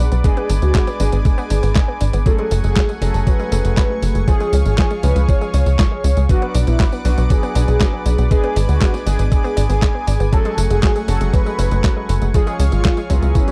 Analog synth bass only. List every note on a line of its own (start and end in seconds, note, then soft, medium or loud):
0.12 0.23 B1 medium
0.50 0.60 G#1 loud
0.62 0.73 D2 medium
1.00 1.11 G#1 medium
1.13 1.23 G#1 medium
1.51 1.61 G#1 medium
1.63 1.74 G#1 medium
2.01 2.12 G#1 medium
2.14 2.24 G#1 medium
2.51 2.62 F#1 medium
2.64 2.75 F#1 medium
3.02 3.12 F#1 loud
3.14 3.25 F#1 medium
3.52 3.63 F#1 medium
3.65 3.75 F#1 medium
4.02 4.13 F#1 loud
4.15 4.26 F#1 medium
4.53 4.64 C#2 medium
4.65 4.76 G#1 medium
5.03 5.14 C#2 loud
5.16 5.27 C#2 medium
5.54 5.64 C#2 medium
5.66 5.77 C#2 medium
6.04 6.15 C#2 loud
6.17 6.28 C#2 medium
6.55 6.65 B1 medium
6.67 6.78 B1 medium
7.05 7.16 B1 loud
7.18 7.28 B1 medium
7.55 7.66 B1 medium
7.68 7.79 B1 medium
8.06 8.17 B1 medium
8.18 8.29 B1 medium
8.56 8.67 G#1 loud
8.69 8.80 D2 medium
9.06 9.17 G#1 loud
9.19 9.30 G#1 medium
9.57 9.68 G#1 medium
9.70 9.80 G#1 medium
10.07 10.18 G#1 medium
10.20 10.31 G#1 medium
10.58 10.69 F#1 loud
10.70 10.81 F#1 medium
11.08 11.19 F#1 medium
11.21 11.32 F#1 medium
11.59 11.69 F#1 medium
11.71 11.82 F#1 medium
12.09 12.20 F#1 loud
12.22 12.32 F#1 medium
12.59 12.70 C#2 loud
12.72 12.83 G#1 medium
13.10 13.21 C#2 loud
13.22 13.33 C#2 medium